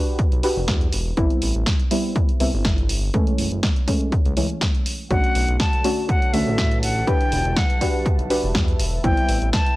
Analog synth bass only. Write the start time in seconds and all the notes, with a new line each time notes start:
0.32 B1
0.57 E1
0.68 E2
0.93 E1
1.17 A1
1.42 A1
1.55 A1
2.40 C2
2.53 G1
3.39 F#1
3.52 F#1
4.25 C#2
4.37 C#2
5.11 B1
5.35 B1
5.48 B1
6.34 D2
6.47 A1
7.32 E1
7.45 E1
8.19 B1
8.43 E1
8.55 E2
8.80 E1
9.04 A1
9.29 A1
9.42 A1